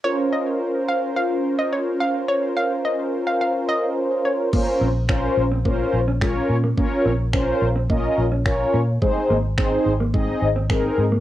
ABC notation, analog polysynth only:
X:1
M:4/4
L:1/8
Q:1/4=107
K:Bbm
V:1 name="Analog polysynth"
[DFBc]8- | [DFBc]8 | [DFBc] z [DFBc] z [DFBc] z [DFBd] z | [DFBd] z [DFBc] z [DFBe] z [DFBd] z |
[CEAc] z [CEAc] z [CEAe] z [CEAB] z |]